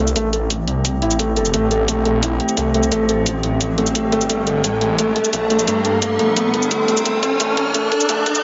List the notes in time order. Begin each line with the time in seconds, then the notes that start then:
Already playing: C2 A3 C4 G4, riser
0.07 cabasa
0.16 A1 A3, kick, closed hi-hat, cabasa
0.33 A4, closed hi-hat, cabasa
0.50 kick, closed hi-hat, cabasa
0.68 C2, closed hi-hat
0.85 kick, closed hi-hat, cabasa
1.02 A1 E4, closed hi-hat
1.11 cabasa
1.19 A3, kick, closed hi-hat, cabasa
1.36 A4, closed hi-hat, cabasa
1.45 cabasa
1.54 A1 A3, kick, closed hi-hat, cabasa
1.71 A4, closed hi-hat, cabasa
1.88 A#1 A3, kick, closed hi-hat, cabasa
2.05 A3, closed hi-hat
2.23 E4, kick, closed hi-hat, cabasa
2.40 closed hi-hat
2.49 cabasa
2.57 C2 A3, kick, closed hi-hat, cabasa
2.74 A3, closed hi-hat, cabasa
2.83 cabasa
2.92 A1 A3, kick, closed hi-hat, cabasa
3.09 A4, closed hi-hat, cabasa
3.26 kick, closed hi-hat, cabasa
3.43 A1, closed hi-hat
3.61 kick, closed hi-hat, cabasa
3.78 A3, closed hi-hat
3.86 cabasa
3.95 A3, kick, closed hi-hat, cabasa
4.03 G#1
4.12 A3, closed hi-hat, cabasa
4.21 cabasa
4.30 G1 G3 A3 D4 A4 A#4, kick, closed hi-hat, cabasa
4.47 A4, closed hi-hat, cabasa
4.64 A1 A3, kick, closed hi-hat, cabasa
4.81 A3, closed hi-hat
4.99 A3, kick, closed hi-hat, cabasa
5.16 A4, closed hi-hat
5.24 cabasa
5.33 A#1 A3, kick, closed hi-hat, cabasa
5.50 A3, closed hi-hat, cabasa
5.59 cabasa
5.68 G2 A3, kick, closed hi-hat, cabasa
5.85 A4, closed hi-hat, cabasa
6.02 A3, kick, closed hi-hat, cabasa
6.19 A#1 A3, closed hi-hat
6.36 A3, kick, closed hi-hat, cabasa
6.54 G1 A4, closed hi-hat
6.62 cabasa
6.71 A3, kick, closed hi-hat, cabasa
6.88 A3, closed hi-hat, cabasa
6.97 cabasa
7.05 G1 A3, kick, closed hi-hat, cabasa
7.23 A4, kick, closed hi-hat, cabasa
7.40 A1 A3, kick, closed hi-hat, cabasa
7.57 kick, closed hi-hat
7.74 A3, kick, closed hi-hat, cabasa
7.92 A4, kick, closed hi-hat
8.00 cabasa
8.09 A#1 A3, kick, closed hi-hat, cabasa
8.26 A4, kick, closed hi-hat, cabasa
8.35 cabasa